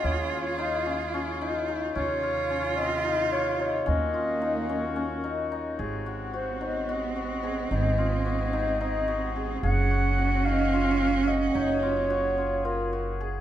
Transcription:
Already playing: C#3 A#3 D#4 F4 F#4 G#4
0.04 D#2 C#4 C#5
0.31 F4
0.40 C#5
0.58 D#4 F5
0.86 C#4
1.14 C#4
1.41 D#4
1.68 D#4
1.94 D#2 C3 C#4 F4 C#5
2.23 F4
2.50 C#4
2.77 C4 D#5
3.05 D#4
3.32 F4 C#5
3.59 D#4 C#5
3.86 D#2 D#3 A#3 C#4 F#4 D#5
4.14 F4
4.42 D#4
4.69 C#4
4.96 C#4
5.24 D#4
5.52 D#4
5.78 G#1 C3 G#3 C4 F#4 G#4
6.06 F#4
6.34 F#4 C5
6.61 D#4 C5
6.89 F#4 D#5
7.16 F#4
7.43 G#4
7.71 G#1 D#4 G#4 D#5
7.98 F4
8.26 F#4
8.53 D#4
8.81 D#4 D#5
9.08 F#4
9.36 G#4
9.62 F#1 F#3 A#3 C#4 F#4 G#4 F#5
9.91 F#4
10.18 F#4
10.45 D#4 F5
10.73 F4
11.01 F4
11.28 F#4 D#5
11.55 F#1 D#4 G#4 C#5
11.83 F4
12.10 F#4
12.38 F4
12.65 F4 A#4
12.93 F#4
13.21 G#4

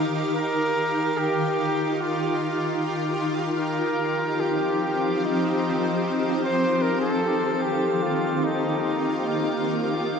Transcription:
Already playing: D#3 D#4 G4 A#4 F5 D6
0.36 A#4
0.99 F4
1.18 G4
2.01 F4
3.60 F3 A#4
3.94 C4
4.40 G4
4.63 C5
5.24 D#4
6.44 C5
6.82 D#3 A#4 D6
7.01 A4
7.44 A#3
7.62 F4 G4
8.03 F4
8.44 D#4

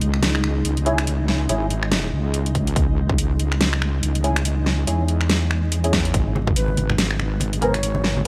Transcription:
Already playing: C#2 G#3 D#4
0.01 closed hi-hat
0.14 finger snap
0.23 snare, closed hi-hat
0.35 finger snap
0.44 finger snap
0.65 C#2, closed hi-hat
0.77 closed hi-hat
0.86 C#4 E4 G#4, closed hi-hat
0.98 finger snap, closed hi-hat
1.07 closed hi-hat
1.28 snare
1.49 G#1 C#4 E4 G#4, closed hi-hat
1.70 closed hi-hat
1.83 finger snap
1.92 snare, closed hi-hat
2.13 C#2
2.34 closed hi-hat
2.46 closed hi-hat
2.55 kick, closed hi-hat
2.67 closed hi-hat
2.76 C#2, kick, closed hi-hat
3.10 kick
3.18 C#2, closed hi-hat
3.40 closed hi-hat
3.52 finger snap
3.61 snare, closed hi-hat
3.73 finger snap
3.82 finger snap
4.03 C#2, closed hi-hat
4.15 closed hi-hat
4.24 C#4 E4 G#4, closed hi-hat
4.36 finger snap, closed hi-hat
4.45 closed hi-hat
4.66 snare
4.87 E2 C#4 E4 G#4, closed hi-hat
5.08 closed hi-hat
5.21 finger snap
5.30 snare, closed hi-hat
5.51 finger snap
5.72 closed hi-hat
5.84 C#4 E4 G#4, closed hi-hat
5.93 kick, snare, closed hi-hat
6.05 closed hi-hat
6.14 G#1 G#3 D#4, kick, closed hi-hat, muted conga
6.36 muted conga
6.47 kick, high conga
6.56 G#1 B4, closed hi-hat
6.68 muted conga, high conga
6.77 closed hi-hat, high conga
6.89 finger snap, muted conga, low conga
6.98 snare, closed hi-hat
7.11 finger snap
7.20 finger snap, muted conga
7.40 G#1, closed hi-hat, muted conga
7.53 closed hi-hat
7.62 B3 G#4 A#4 C#5, closed hi-hat, high conga
7.74 finger snap, closed hi-hat, muted conga
7.83 closed hi-hat
7.95 muted conga
8.04 snare
8.16 high conga

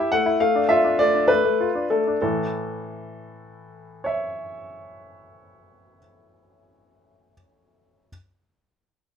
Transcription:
Already playing: E5
0.00 E4
0.12 A3 F#5
0.26 E4
0.40 A3 F5
0.56 D4
0.69 F4 E5
0.84 D4
0.99 A3 D5
1.15 D4
1.28 A3 B4
1.45 A3
1.60 F4
1.75 D4
1.90 A3 A4
2.07 D4
2.21 A2 E3 A4
4.04 C#5 E5

